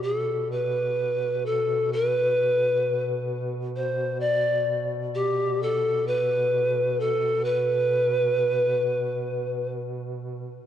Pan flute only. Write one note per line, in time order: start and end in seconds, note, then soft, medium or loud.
0.03 0.51 A4 medium
0.51 1.47 B4 medium
1.46 1.94 A4 medium
1.93 3.51 B4 loud
3.76 4.22 C5 medium
4.20 4.91 D5 loud
5.15 5.64 G4 medium
5.62 6.09 A4 medium
6.07 7.02 B4 medium
7.00 7.46 A4 medium
7.45 9.79 B4 loud